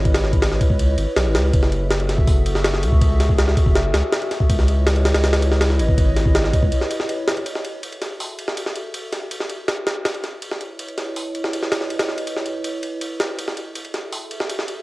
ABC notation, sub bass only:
X:1
M:4/4
L:1/16
Q:1/4=162
K:F#m
V:1 name="Sub bass" clef=bass
G,,,6 z C,,3 G,,, z B,,, G,,, C,,2 | F,,,6- F,,, F,,,6- F,,, C,,2- | C,,6 z F,,,3 C,, z4 z | C,,6- C,, C,,6- C,, G,,,2- |
G,,,6 z C,, z8 | z16 | z16 | z16 |
z16 | z16 |]